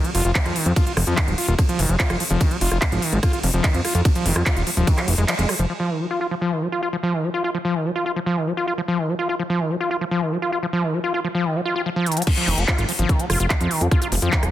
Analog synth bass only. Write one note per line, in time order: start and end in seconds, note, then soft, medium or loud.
0.15 0.22 F1 loud
0.25 0.32 F1 medium
0.46 0.53 F2 medium
0.66 0.73 F2 medium
0.97 1.04 F1 loud
1.07 1.14 F2 medium
1.28 1.35 D#1 medium
1.48 1.55 D#1 medium
1.79 1.86 F1 loud
1.89 1.96 F1 medium
2.10 2.17 F1 medium
2.30 2.38 F1 medium
2.61 2.68 F1 loud
2.72 2.79 F1 medium
2.92 2.99 G#1 medium
3.13 3.20 G#1 medium
3.43 3.51 F1 loud
3.54 3.61 F1 medium
3.74 3.81 F2 medium
3.95 4.02 F2 medium
4.26 4.33 F1 loud
4.36 4.43 F2 medium
4.57 4.64 D#1 medium
4.77 4.84 D#1 medium
5.08 5.15 F1 loud
5.18 5.25 F1 medium
5.39 5.46 F1 medium
5.59 5.66 F1 medium
12.48 12.55 F1 loud
12.58 12.65 F1 medium
12.78 12.85 G#1 medium
12.99 13.06 G#1 medium
13.30 13.37 F1 loud
13.40 13.47 F1 medium
13.61 13.68 F2 medium
13.81 13.88 F2 medium
14.12 14.19 F1 loud
14.22 14.29 F2 medium
14.43 14.50 D#1 medium